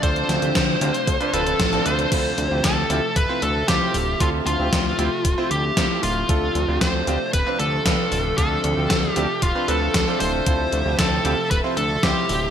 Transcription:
Already playing: C3 F3 A3 D4
0.03 D2 C4 D4 F4 A4 C5, kick, closed hi-hat
0.16 closed hi-hat
0.29 D2, snare, closed hi-hat
0.42 D2 C4 D4 F4 G4, closed hi-hat
0.55 D2, kick, snare, closed hi-hat
0.81 D2 C4 D4 F4 G4, closed hi-hat
0.94 closed hi-hat
1.07 D2, kick, closed hi-hat
1.20 C4 D4 F4 B4, closed hi-hat
1.33 D1 C4 D4 F4 A4 B4, closed hi-hat
1.47 C4 D4 F4 A4, closed hi-hat
1.60 A1, kick, snare, closed hi-hat
1.73 C4 D4 F4 A4, closed hi-hat
1.86 D2 C5, closed hi-hat
1.99 closed hi-hat
2.12 D2 C3 F3 A3 C4 E4 F4 A4 E5, kick, closed hi-hat, crash
2.38 D2, closed hi-hat
2.51 D2 C4 E4 F4 G4
2.64 D2 A4, kick, snare, closed hi-hat
2.90 D2 C4 E4 F4 G4, closed hi-hat
3.16 D1 B4, kick, closed hi-hat
3.29 C4 E4 F4 C5
3.42 D2 A4, closed hi-hat
3.68 D2 C4 E4 F4 G4 C5, kick, snare, closed hi-hat
3.94 D1, open hi-hat
4.20 D2 C4 E4 F4 A4, kick, closed hi-hat
4.46 D2 F4, closed hi-hat
4.59 D2 C4 F4 G4 E5
4.73 D2, kick, snare, closed hi-hat
4.86 snare
4.99 D2 C4 E4 F4 G4, closed hi-hat
5.25 D1, kick, closed hi-hat
5.38 C4 E4 F4 C5
5.51 D2 G4, closed hi-hat
5.77 D2 C4 E4 F4 C5, kick, snare, closed hi-hat
6.03 D1 F4, open hi-hat
6.29 D2 C4 D4 F4 A4, kick, closed hi-hat
6.55 D2, closed hi-hat
6.68 D2 C4 D4 F4 G4
6.81 D2 C5, kick, snare, closed hi-hat
7.07 D2 C4 D4 F4 G4, closed hi-hat
7.33 D1 B4, kick, closed hi-hat
7.47 C4 D4 F4 B4
7.60 D2 A4, closed hi-hat
7.86 D2 C4 D4 F4 B4, kick, snare, closed hi-hat
8.12 D1, open hi-hat
8.38 D2 C4 D4 F4 A4 E5, kick, closed hi-hat
8.64 D2, closed hi-hat
8.77 D2 C4 D4 F4 G4
8.90 D2, kick, snare, closed hi-hat
9.03 snare
9.13 D2 C4 D4 F4 G4, closed hi-hat
9.42 D1 F4, kick, closed hi-hat
9.55 C4 D4 F4 B4
9.68 D2 C4 D4 F4 A4 B4, closed hi-hat
9.81 C4 D4 F4 A4
9.94 D2, kick, snare, closed hi-hat
10.07 C4 D4 F4 A4
10.20 D1 C5, open hi-hat
10.46 D2 C4 E4 F4 A4, kick, closed hi-hat
10.73 D2, closed hi-hat
10.86 D2 C4 E4 F4 G4
10.99 D2 A4, kick, snare, closed hi-hat
11.25 D2 C4 E4 F4 G4, closed hi-hat
11.51 D1 B4, kick, closed hi-hat
11.64 C4 E4 F4 C5
11.77 D2 A4, closed hi-hat
12.03 D2 C4 E4 F4 G4 C5, kick, snare, closed hi-hat
12.29 D1, open hi-hat

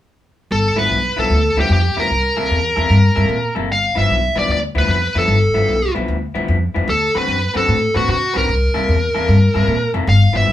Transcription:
0.51 G1 A4
0.76 G1 G2 F3 B3 E4 B4
0.90 B1
1.16 B1 G2 F3 B3 E4 A4
1.30 D2
1.56 D2 G2 F3 B3 E4 G4
1.69 F2 G4
1.96 D2 G2 F3 B3 E4 A#4
2.10 C2
2.37 C2 C3 A#3 E4 A4
2.51 E2
2.76 E2 C3 A#3 E4 A4
2.90 G2
3.16 G2 C3 A#3 E4 A4
3.29 A#2
3.55 F#1 C3 A#3 E4 A4
3.69 G1 F5
3.95 G1 G2 F3 B3 E4 E5
4.10 B1
4.35 B1 G2 F3 B3 E4 D5
4.48 D2 D5
4.75 D2 G2 F3 B3 E4 B4
4.88 F2 B4
5.15 F2 G2 F3 B3 E4 A4
5.28 G1
5.54 G1 G2 F3 B3 E4
5.68 B1
5.95 B1 G2 F3 B3 E4
6.08 D2
6.35 D2 G2 F3 B3 E4
6.48 F2
6.74 F2 G2 F3 B3 E4
6.88 D2 A4
7.15 D2 D3 C4 F#4 B4
7.28 F#2
7.54 F#2 D3 C4 F#4 A4 B4
7.68 A2
7.94 A2 D3 C4 F#4 B4
8.08 C3 F#4
8.34 B1 D3 C4 F#4 A#4 B4
8.49 C2
8.74 C2 C3 A#3 E4 A4
8.88 E2
9.14 E2 C3 A#3 E4 A4
9.28 G2
9.54 G2 C3 A#3 E4 A4
9.67 A#2
9.94 F1 C3 A#3 E4 A4
10.07 G1 F5
10.33 G1 G2 F3 B3 E4 E5
10.47 B1

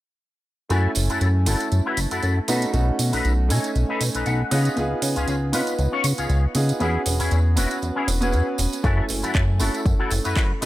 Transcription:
0.69 F#2 A3 C#4 E4 F#4 A4 G#5, closed hi-hat, tambourine
0.95 F#1, open hi-hat, tambourine
1.10 F#2 E4 F#4 A4, closed hi-hat, tambourine
1.21 F#2, closed hi-hat, tambourine
1.46 F#1 A3 C#4 E4 F#4 A4, open hi-hat, tambourine
1.60 closed hi-hat, tambourine
1.72 F#2, closed hi-hat, tambourine
1.86 E4 F#4 B4
1.97 F#1, open hi-hat, tambourine
2.11 F#2 E4 F#4 A4, closed hi-hat, tambourine
2.23 F#2, closed hi-hat, tambourine
2.48 B2 A3 C#4 D#4 F#4 A4 B4, open hi-hat, tambourine
2.62 closed hi-hat, tambourine
2.73 B1 A3 C#4 D#4 F#4, closed hi-hat, tambourine
2.99 B2, open hi-hat, tambourine
3.13 B1 D#4 A4 B4, open hi-hat, tambourine
3.25 B1, closed hi-hat, tambourine
3.49 B2 A3 C#4 D#4 A4 C#5 G#5, open hi-hat, tambourine
3.64 closed hi-hat, tambourine
3.75 B1, closed hi-hat, tambourine
3.89 D#4 A4 B4
4.01 B2, open hi-hat, tambourine
4.15 B1 D#4 A4 B4, closed hi-hat, tambourine
4.26 B1 F#5, closed hi-hat, tambourine
4.51 C#3 B3 C#4 D#4 F4 G#4 B4 D#5, open hi-hat, tambourine
4.65 closed hi-hat, tambourine
4.76 C#2 B3 D#4 F4 G#4, closed hi-hat, tambourine
5.02 C#3, open hi-hat, tambourine
5.16 C#2 C#4 F4 G#4, closed hi-hat, tambourine
5.28 C#2, closed hi-hat, tambourine
5.53 C#3 B3 C#4 D#4 F4 B4, open hi-hat, tambourine
5.67 closed hi-hat, tambourine
5.79 C#2, closed hi-hat, tambourine
5.92 C#4 F4 C#5
6.04 C#3, open hi-hat, tambourine
6.17 C#2 C#4 F4 G#4, closed hi-hat, tambourine
6.29 C#2, closed hi-hat, tambourine
6.55 C#3 B3 D#4 F4 G#4, open hi-hat, tambourine
6.69 muted clean electric guitar stroke, closed hi-hat, tambourine
6.80 E2 B3 C#4 E4 F#4 G#4, closed hi-hat, tambourine
7.06 E1, open hi-hat, tambourine
7.19 E2 C#4 E4 G#4, open hi-hat, tambourine
7.31 E2, closed hi-hat, tambourine
7.56 E1 B3 C#4 E4 F#4 B4, open hi-hat, tambourine
7.71 closed hi-hat, tambourine
7.82 E2, closed hi-hat, tambourine
7.96 C#4 E4 G#4
8.08 E1, open hi-hat, tambourine
8.21 B3 C#4 E4 F#4 G#4 B4, closed hi-hat, tambourine
8.32 E2, closed hi-hat, tambourine
8.58 E1, open hi-hat, tambourine
8.72 muted clean electric guitar stroke, closed hi-hat, tambourine
8.83 F#2 A3 C#4 E4 F#4 A4 G#5, kick, closed hi-hat, tambourine
9.09 F#1, open hi-hat, tambourine
9.22 F#2 E4 F#4 A4, closed hi-hat, tambourine
9.34 F#2, kick, clap, closed hi-hat, tambourine
9.59 F#1 A3 C#4 E4 F#4 A4, open hi-hat, tambourine
9.75 closed hi-hat, tambourine
9.86 F#2, kick, closed hi-hat, tambourine
9.99 E4 F#4 A4
10.10 F#1, open hi-hat, tambourine
10.24 F#2 E4 F#4 B4, closed hi-hat, tambourine
10.36 F#2, kick, clap, closed hi-hat, tambourine
10.61 B2 A3 C#4 D#4 A4 B4, open hi-hat

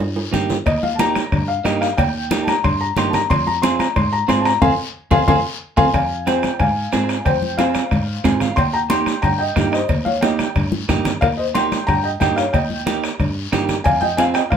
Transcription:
0.00 G2, cowbell, high conga, long guiro
0.16 low timbale
0.33 G2 A#3 D#4 G4, cowbell, high conga, low conga, low timbale, short guiro
0.50 low conga, low timbale, short guiro
0.66 D#2 D#5, bombo low, bombo rim, cowbell, high conga, long guiro
0.83 F5, high conga
0.95 A#3 A5, short guiro
0.99 D#4 G4 A#5, bombo rim, cowbell, high conga
1.15 bombo rim, high conga, short guiro
1.32 G2, bombo low, bombo rim, cowbell, high conga, long guiro
1.48 F5
1.64 G2 A#3 D#4 G4 D#5, bombo rim, cowbell, high conga, short guiro
1.81 F5, bombo rim, short guiro
1.98 D#2 G5, bombo low, bombo rim, cowbell, high conga, long guiro
2.31 A#3 D#4 G4, bombo rim, cowbell, high conga, short guiro
2.44 A5, high conga
2.48 A#5, bombo rim, short guiro
2.64 G2 C6, bombo low, bombo rim, cowbell, high conga, long guiro
2.81 A#5
2.96 G2 A#3 D#4 G4 C6, bombo rim, cowbell, high conga, low conga, short guiro
3.10 A5, low conga
3.14 A#5, bombo rim, short guiro
3.30 F2 C6, bombo low, bombo rim, cowbell, high conga, long guiro
3.47 A#5, high conga
3.62 C4 F4 G#4 C6, bombo rim, cowbell, high conga, short guiro
3.79 A#5, bombo rim, high conga, short guiro
3.96 G#2 C6, bombo low, bombo rim, cowbell, high conga, long guiro
4.13 A#5
4.28 G#2 C4 F4 G#4 C6, bombo rim, cowbell, high conga, low timbale, short guiro
4.41 A5
4.45 A#5, bombo rim, short guiro
4.62 F2 C4 F4 G#4 F5 G#5 C6, bombo low, high conga, high timbale, long guiro
5.11 F2 C4 F4 G#4 F5 G#5 C6, bombo low, high conga, high timbale, long guiro
5.28 F2 C4 F4 G#4 F5 G#5 C6, bombo low, high conga, high timbale, long guiro
5.77 F2 C4 F4 G#4 F5 G#5 C6, bombo low, high conga, high timbale, long guiro
5.94 F2 F5 G#5, bombo low, bombo rim, cowbell, high conga, long guiro
6.27 C4 F4 G#4 C5 G5, bombo rim, cowbell, high conga, short guiro
6.43 bombo rim, high conga, short guiro
6.59 G#2 F5 G#5, bombo low, bombo rim, cowbell, high conga, long guiro
6.92 G#2 C4 F4 G#4, bombo rim, cowbell, high conga, low timbale, short guiro
7.09 bombo rim, short guiro
7.25 F2 C5 G5, bombo low, bombo rim, cowbell, high conga, long guiro
7.42 high conga
7.58 C4 F4 G#4 C5 F5, bombo rim, cowbell, high conga, short guiro
7.74 bombo rim, high conga, short guiro
7.91 G#2, bombo low, bombo rim, cowbell, high conga, long guiro
8.24 G#2 C4 F4 G#4 G#5, bombo low, bombo rim, cowbell, high conga, low conga, short guiro
8.40 F5, bombo rim, low conga, short guiro
8.56 D#2 G5 C6, bombo low, bombo rim, cowbell, high conga, long guiro
8.73 G5 A#5
8.90 A#3 D#4 G4 G5 C6, bombo rim, cowbell, high conga, short guiro
9.06 bombo rim, high conga, short guiro
9.22 G2 G5 A#5, bombo low, bombo rim, cowbell, high conga, long guiro
9.38 D#5 G5
9.56 G2 A#3 D#4 G4, bombo low, bombo rim, cowbell, high conga, low timbale, short guiro
9.72 C5 D#5, bombo rim, short guiro
9.89 D#2, bombo low, bombo rim, cowbell, high conga, long guiro
10.05 C#5 F5, high conga
10.21 A#3 D#4 G4 D#5 G5, bombo rim, cowbell, high conga, short guiro
10.39 bombo rim, high conga, short guiro
10.55 G2, bombo low, bombo rim, cowbell, high conga, long guiro
10.72 high conga
10.89 G2 A#3 D#4 G4, bombo low, bombo rim, cowbell, high conga, short guiro
11.05 bombo rim, low conga, short guiro
11.21 D#2 A#4 F5, bombo low, bombo rim, cowbell, high conga, long guiro
11.37 C5 D#5
11.54 A#3 D#4 G4 G5 C6, bombo rim, cowbell, high conga, short guiro
11.72 bombo rim, high conga, short guiro
11.87 G2 G5 A#5, bombo low, bombo rim, cowbell, high conga, long guiro
12.04 D#5 G5
12.20 G2 A#3 D#4 G4 D#5 G5, bombo low, bombo rim, cowbell, high conga, short guiro
12.36 C#5 F5, bombo rim, short guiro
12.53 D#2 D#5 G5, bombo low, bombo rim, cowbell, high conga, long guiro
12.70 high conga
12.86 A#3 D#4 G4, bombo rim, cowbell, high conga, short guiro
13.04 bombo rim, short guiro
13.20 G2, bombo low, bombo rim, cowbell, high conga, long guiro
13.52 G2 A#3 D#4 G4, bombo rim, cowbell, high conga, low conga, low timbale, short guiro
13.69 bombo rim, low conga, short guiro
13.84 F2 F5 G#5, bombo low, bombo rim, cowbell, high conga, long guiro
14.01 D#5 G5, high conga
14.17 C4 F4 G#4 F5 G#5, bombo rim, cowbell, high conga, short guiro
14.34 D#5 G5, bombo rim, short guiro
14.50 G#2 C5 F5, bombo low, bombo rim, cowbell, high conga, long guiro

